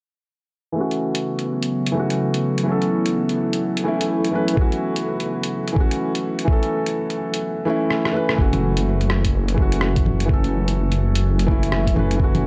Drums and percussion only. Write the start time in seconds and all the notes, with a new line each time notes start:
0.91 closed hi-hat
1.15 closed hi-hat
1.39 closed hi-hat
1.63 closed hi-hat
1.87 closed hi-hat
2.10 closed hi-hat
2.34 closed hi-hat
2.58 closed hi-hat
2.82 closed hi-hat
3.06 closed hi-hat
3.29 closed hi-hat
3.53 closed hi-hat
3.77 closed hi-hat
4.01 closed hi-hat
4.25 closed hi-hat
4.48 closed hi-hat
4.57 kick
4.72 closed hi-hat
4.96 closed hi-hat
5.20 closed hi-hat
5.43 closed hi-hat
5.68 closed hi-hat
5.76 kick
5.91 closed hi-hat
6.15 closed hi-hat
6.39 closed hi-hat
6.48 kick
6.63 closed hi-hat
6.86 closed hi-hat
7.10 closed hi-hat
7.34 closed hi-hat
7.91 cross-stick
8.05 cross-stick
8.29 cross-stick
8.38 kick
8.53 closed hi-hat, low bongo
8.77 closed hi-hat
9.01 closed hi-hat
9.10 cross-stick
9.25 kick, closed hi-hat
9.48 closed hi-hat
9.58 kick
9.72 closed hi-hat
9.81 cross-stick
9.96 kick, closed hi-hat
10.06 low bongo
10.20 closed hi-hat
10.29 kick
10.44 closed hi-hat
10.68 closed hi-hat
10.92 closed hi-hat
11.15 closed hi-hat
11.39 closed hi-hat
11.48 kick
11.63 closed hi-hat
11.72 cross-stick
11.87 kick, closed hi-hat
11.96 low bongo
12.11 closed hi-hat
12.20 kick
12.35 closed hi-hat, low bongo